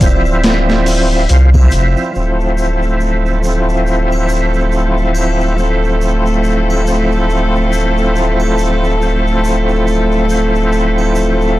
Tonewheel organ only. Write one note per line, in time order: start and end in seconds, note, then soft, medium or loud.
0.00 1.25 F3 medium
0.00 1.27 C4 medium
0.06 1.29 E4 loud
1.29 1.49 F3 medium
1.29 1.49 C4 medium
1.29 1.50 F4 medium
1.54 2.11 F3 medium
1.54 2.12 C4 medium
1.54 2.13 E4 loud
2.13 3.39 F3 medium
2.13 3.40 C4 medium
2.20 3.42 E4 medium
3.41 5.53 F3 medium
3.41 5.55 C4 medium
3.49 5.56 E4 medium
5.56 6.81 F3 medium
5.56 6.83 C4 medium
5.63 6.85 E4 medium
6.85 8.96 F3 medium
6.85 8.98 C4 medium
6.92 8.99 E4 medium
8.99 10.25 F3 medium
8.99 10.26 C4 medium
9.06 10.28 E4 medium
10.28 11.59 F3 medium
10.28 11.59 C4 medium
10.35 11.59 E4 medium